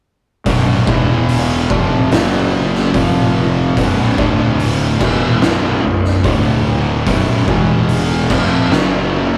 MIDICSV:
0, 0, Header, 1, 4, 480
1, 0, Start_track
1, 0, Key_signature, 2, "minor"
1, 0, Tempo, 825309
1, 269, Time_signature, 4, 2, 24, 8
1, 5454, End_track
2, 0, Start_track
2, 0, Title_t, "Distorted electric guitar"
2, 0, Program_c, 0, 30
2, 269, Note_on_c, 0, 35, 89
2, 272, Note_on_c, 0, 42, 98
2, 273, Note_on_c, 0, 47, 97
2, 502, Note_off_c, 0, 35, 0
2, 504, Note_off_c, 0, 42, 0
2, 504, Note_off_c, 0, 47, 0
2, 509, Note_on_c, 0, 40, 84
2, 513, Note_on_c, 0, 47, 79
2, 515, Note_on_c, 0, 52, 94
2, 984, Note_off_c, 0, 40, 0
2, 985, Note_off_c, 0, 47, 0
2, 986, Note_off_c, 0, 52, 0
2, 995, Note_on_c, 0, 41, 101
2, 996, Note_on_c, 0, 53, 106
2, 997, Note_on_c, 0, 48, 106
2, 1227, Note_off_c, 0, 41, 0
2, 1227, Note_off_c, 0, 53, 0
2, 1228, Note_off_c, 0, 48, 0
2, 1233, Note_on_c, 0, 42, 107
2, 1237, Note_on_c, 0, 49, 98
2, 1238, Note_on_c, 0, 54, 94
2, 1706, Note_off_c, 0, 42, 0
2, 1708, Note_off_c, 0, 49, 0
2, 1709, Note_off_c, 0, 54, 0
2, 1712, Note_on_c, 0, 41, 98
2, 1714, Note_on_c, 0, 48, 104
2, 1715, Note_on_c, 0, 53, 118
2, 2186, Note_off_c, 0, 41, 0
2, 2187, Note_off_c, 0, 48, 0
2, 2187, Note_off_c, 0, 53, 0
2, 2196, Note_on_c, 0, 35, 99
2, 2198, Note_on_c, 0, 42, 88
2, 2198, Note_on_c, 0, 47, 111
2, 2428, Note_off_c, 0, 35, 0
2, 2429, Note_off_c, 0, 42, 0
2, 2429, Note_off_c, 0, 47, 0
2, 2432, Note_on_c, 0, 38, 76
2, 2435, Note_on_c, 0, 45, 91
2, 2436, Note_on_c, 0, 50, 102
2, 2906, Note_off_c, 0, 38, 0
2, 2907, Note_off_c, 0, 45, 0
2, 2908, Note_off_c, 0, 50, 0
2, 2910, Note_on_c, 0, 40, 98
2, 2914, Note_on_c, 0, 47, 108
2, 2916, Note_on_c, 0, 52, 102
2, 3145, Note_off_c, 0, 40, 0
2, 3147, Note_off_c, 0, 47, 0
2, 3147, Note_off_c, 0, 52, 0
2, 3154, Note_on_c, 0, 35, 93
2, 3157, Note_on_c, 0, 42, 105
2, 3160, Note_on_c, 0, 47, 106
2, 3386, Note_off_c, 0, 35, 0
2, 3388, Note_off_c, 0, 42, 0
2, 3389, Note_off_c, 0, 47, 0
2, 3393, Note_on_c, 0, 35, 73
2, 3395, Note_on_c, 0, 42, 74
2, 3585, Note_off_c, 0, 35, 0
2, 3586, Note_off_c, 0, 42, 0
2, 3634, Note_on_c, 0, 38, 96
2, 3637, Note_on_c, 0, 45, 102
2, 3637, Note_on_c, 0, 50, 113
2, 4106, Note_off_c, 0, 38, 0
2, 4107, Note_off_c, 0, 45, 0
2, 4107, Note_off_c, 0, 50, 0
2, 4110, Note_on_c, 0, 35, 90
2, 4113, Note_on_c, 0, 42, 109
2, 4116, Note_on_c, 0, 47, 96
2, 4344, Note_off_c, 0, 35, 0
2, 4345, Note_off_c, 0, 42, 0
2, 4346, Note_off_c, 0, 47, 0
2, 4350, Note_on_c, 0, 40, 88
2, 4354, Note_on_c, 0, 47, 105
2, 4354, Note_on_c, 0, 52, 91
2, 4823, Note_off_c, 0, 40, 0
2, 4824, Note_off_c, 0, 47, 0
2, 4825, Note_off_c, 0, 52, 0
2, 4829, Note_on_c, 0, 41, 90
2, 4832, Note_on_c, 0, 48, 107
2, 4836, Note_on_c, 0, 53, 101
2, 5062, Note_off_c, 0, 41, 0
2, 5064, Note_off_c, 0, 48, 0
2, 5065, Note_off_c, 0, 53, 0
2, 5066, Note_on_c, 0, 42, 89
2, 5067, Note_on_c, 0, 49, 93
2, 5071, Note_on_c, 0, 54, 120
2, 5454, Note_off_c, 0, 42, 0
2, 5454, Note_off_c, 0, 49, 0
2, 5454, Note_off_c, 0, 54, 0
2, 5454, End_track
3, 0, Start_track
3, 0, Title_t, "Fingered electric bass"
3, 0, Program_c, 1, 33
3, 267, Note_on_c, 1, 23, 101
3, 492, Note_off_c, 1, 23, 0
3, 507, Note_on_c, 1, 28, 95
3, 967, Note_off_c, 1, 28, 0
3, 991, Note_on_c, 1, 29, 99
3, 1215, Note_off_c, 1, 29, 0
3, 1230, Note_on_c, 1, 30, 91
3, 1689, Note_off_c, 1, 30, 0
3, 1711, Note_on_c, 1, 29, 96
3, 2169, Note_off_c, 1, 29, 0
3, 2193, Note_on_c, 1, 23, 99
3, 2417, Note_off_c, 1, 23, 0
3, 2431, Note_on_c, 1, 26, 93
3, 2889, Note_off_c, 1, 26, 0
3, 2910, Note_on_c, 1, 28, 106
3, 3135, Note_off_c, 1, 28, 0
3, 3153, Note_on_c, 1, 23, 94
3, 3376, Note_off_c, 1, 23, 0
3, 3393, Note_on_c, 1, 23, 78
3, 3616, Note_off_c, 1, 23, 0
3, 3630, Note_on_c, 1, 26, 94
3, 4087, Note_off_c, 1, 26, 0
3, 4110, Note_on_c, 1, 23, 92
3, 4334, Note_off_c, 1, 23, 0
3, 4348, Note_on_c, 1, 28, 91
3, 4805, Note_off_c, 1, 28, 0
3, 4826, Note_on_c, 1, 29, 104
3, 5051, Note_off_c, 1, 29, 0
3, 5062, Note_on_c, 1, 30, 91
3, 5454, Note_off_c, 1, 30, 0
3, 5454, End_track
4, 0, Start_track
4, 0, Title_t, "Drums"
4, 268, Note_on_c, 9, 36, 102
4, 268, Note_on_c, 9, 46, 61
4, 326, Note_off_c, 9, 36, 0
4, 326, Note_off_c, 9, 46, 0
4, 508, Note_on_c, 9, 36, 119
4, 566, Note_off_c, 9, 36, 0
4, 748, Note_on_c, 9, 46, 64
4, 807, Note_off_c, 9, 46, 0
4, 989, Note_on_c, 9, 36, 108
4, 1047, Note_off_c, 9, 36, 0
4, 1231, Note_on_c, 9, 46, 63
4, 1237, Note_on_c, 9, 38, 123
4, 1289, Note_off_c, 9, 46, 0
4, 1295, Note_off_c, 9, 38, 0
4, 1597, Note_on_c, 9, 38, 29
4, 1655, Note_off_c, 9, 38, 0
4, 1712, Note_on_c, 9, 36, 101
4, 1713, Note_on_c, 9, 46, 59
4, 1770, Note_off_c, 9, 36, 0
4, 1771, Note_off_c, 9, 46, 0
4, 2193, Note_on_c, 9, 36, 102
4, 2195, Note_on_c, 9, 46, 61
4, 2251, Note_off_c, 9, 36, 0
4, 2253, Note_off_c, 9, 46, 0
4, 2433, Note_on_c, 9, 36, 120
4, 2491, Note_off_c, 9, 36, 0
4, 2674, Note_on_c, 9, 46, 58
4, 2732, Note_off_c, 9, 46, 0
4, 2911, Note_on_c, 9, 49, 99
4, 2912, Note_on_c, 9, 36, 109
4, 2970, Note_off_c, 9, 36, 0
4, 2970, Note_off_c, 9, 49, 0
4, 3154, Note_on_c, 9, 38, 121
4, 3212, Note_off_c, 9, 38, 0
4, 3516, Note_on_c, 9, 38, 31
4, 3575, Note_off_c, 9, 38, 0
4, 3631, Note_on_c, 9, 36, 116
4, 3632, Note_on_c, 9, 46, 56
4, 3689, Note_off_c, 9, 36, 0
4, 3690, Note_off_c, 9, 46, 0
4, 4110, Note_on_c, 9, 36, 108
4, 4110, Note_on_c, 9, 46, 58
4, 4168, Note_off_c, 9, 36, 0
4, 4169, Note_off_c, 9, 46, 0
4, 4349, Note_on_c, 9, 36, 112
4, 4407, Note_off_c, 9, 36, 0
4, 4588, Note_on_c, 9, 46, 59
4, 4646, Note_off_c, 9, 46, 0
4, 4828, Note_on_c, 9, 36, 106
4, 4828, Note_on_c, 9, 49, 114
4, 4886, Note_off_c, 9, 36, 0
4, 4886, Note_off_c, 9, 49, 0
4, 5072, Note_on_c, 9, 38, 103
4, 5130, Note_off_c, 9, 38, 0
4, 5454, End_track
0, 0, End_of_file